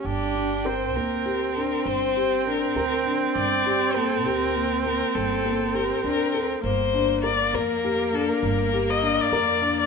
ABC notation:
X:1
M:11/8
L:1/16
Q:1/4=100
K:Gm
V:1 name="Violin"
G4 c2 B4 B2 c4 B2 B3 z | d4 A2 B4 B2 A4 B2 B3 z | c4 d2 B4 A B4 e2 d4 d |]
V:2 name="Felt piano"
z2 D2 B2 B,2 G2 D4 G2 D2 B2 D2- | D2 G2 B,2 G2 B,2 B,4 B,2 G2 D2 A2 | z2 D2 B2 B,2 G2 D4 G2 D2 B2 D2 |]
V:3 name="Viola"
D4 C16- C2- | C16- C6 | B,16- B,6 |]
V:4 name="Upright bass" clef=bass
G,,,6 D,,6 G,,,6 D,,4 | G,,,6 D,,6 G,,,6 D,,4 | G,,,6 F,,6 G,,,6 F,,4 |]